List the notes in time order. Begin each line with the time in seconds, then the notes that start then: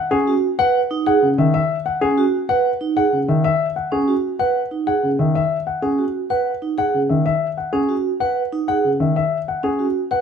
Already playing: F#5
0.11 C#4 G#4
0.27 F#4
0.59 B4 F#5
0.91 D#4
1.07 G#4 F#5
1.22 C#3
1.38 D#3 E5
1.54 E5
1.86 F#5
2.01 C#4 G#4
2.18 F#4
2.49 B4 F#5
2.81 D#4
2.97 G#4 F#5
3.12 C#3
3.28 D#3 E5
3.44 E5
3.76 F#5
3.92 C#4 G#4
4.08 F#4
4.39 B4 F#5
4.71 D#4
4.87 G#4 F#5
5.03 C#3
5.19 D#3 E5
5.35 E5
5.67 F#5
5.82 C#4 G#4
5.98 F#4
6.30 B4 F#5
6.62 D#4
6.78 G#4 F#5
6.94 C#3
7.09 D#3 E5
7.26 E5
7.57 F#5
7.73 C#4 G#4
7.89 F#4
8.20 B4 F#5
8.52 D#4
8.68 G#4 F#5
8.84 C#3
9.00 D#3 E5
9.16 E5
9.48 F#5
9.63 C#4 G#4
9.79 F#4
10.11 B4 F#5